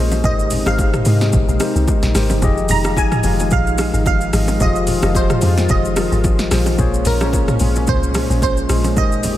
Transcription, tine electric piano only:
Already playing: A#3 F4 G#4 C#5
0.00 C5 D#5
0.24 G#3 D#4 G4 A#4 C5
0.66 G#3 D#4 G4 A#4 C5
1.05 G#3 D#4 G4 A#4 D#5
1.60 G#3 D#4 G4 A#4 C5
2.15 G#3 D#4 G4 A#4 C5
2.42 F3 F4 G4 G#4 D#5
2.84 F3 F4 G4 G#4 F5
3.24 F3 F4 G4 G#4 F5
4.33 F3 F4 G4 G#4 D#5
4.60 F3 F4 G4 G#4 F5
5.02 F3 F4 G4 G#4 D#5
5.42 F3 F4 G4 G#4 C5
5.96 F3 F4 G4 G#4 A#4
6.51 F3 F4 G4 G#4 C5
6.78 A#3 F4 G#4 C5 C#5
7.20 A#3 F4 G#4 C5 C#5
7.60 A#3 C#4 F4 G#4 C5
8.69 A#3 F4 G#4 C5 D#5
8.96 G#3 D#4 G4 A#4 C5

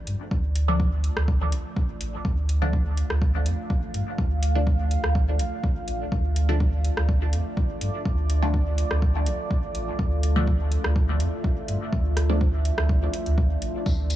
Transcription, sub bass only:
0.07 G2
0.31 D2
1.17 D2
1.52 A1
2.01 A1
2.25 D2
3.10 D2
3.46 F2
3.94 G2
4.18 D2
5.04 D2
5.39 A1
5.88 A1
6.12 D2
6.97 D2
7.33 F2
7.81 G2
8.05 D2
8.91 D2
9.26 A1
9.75 A1
9.99 D2
10.84 D2
11.20 F2
11.68 G2
11.93 D2
12.78 D2
13.26 D2
13.62 A1
13.86 D2

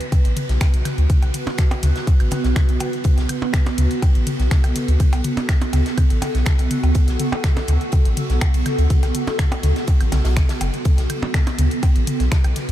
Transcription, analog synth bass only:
0.25 A1
0.49 B1
0.74 B1
0.98 D2
1.23 B1
1.83 D2
2.20 A1
2.44 B1
2.69 B1
3.18 B1
3.78 D2
4.15 A1
4.40 B1
4.64 B1
4.88 D2
5.13 B1
5.73 D2
6.10 A1
6.35 B1
6.59 B1
6.83 D2
7.08 B1
7.68 D2
8.05 A1
8.30 B1
8.54 B1
8.79 D2
9.03 B1
9.63 D2
10.01 A1
10.12 B1
10.25 B1
10.61 F#1
10.98 B1
11.59 D2
11.96 A1
12.20 B1
12.45 B1

